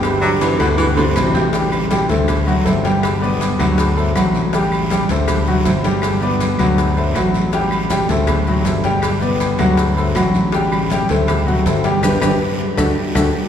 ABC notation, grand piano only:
X:1
M:4/4
L:1/8
Q:1/4=160
K:Dmix
V:1 name="Grand piano"
[Ggg'] [Ddd']2 [Fff']2 [Ccc']2 [Ggg'] | [G,Gg]2 [G,Gg] [A,Ac]2 [F,Ff] [A,Ac] [G,Gg]- | [G,Gg] [B,Bd]2 [F,Ff]2 [A,Ac] [F,Ff]2 | [G,Gg]2 [G,Gg] [A,Ac]2 [F,Ff] [A,Ac] [G,Gg]- |
[G,Gg] [B,Bd]2 [F,Ff]2 [A,Ac] [F,Ff]2 | [G,Gg]2 [G,Gg] [A,Ac]2 [F,Ff] [A,Ac] [G,Gg]- | [G,Gg] [B,Bd]2 [F,Ff]2 [A,Ac] [F,Ff]2 | [G,Gg]2 [G,Gg] [A,Ac]2 [F,Ff] [A,Ac] [G,Gg] |
[DGB] [DGB] z2 [DFA] z [DFA] z |]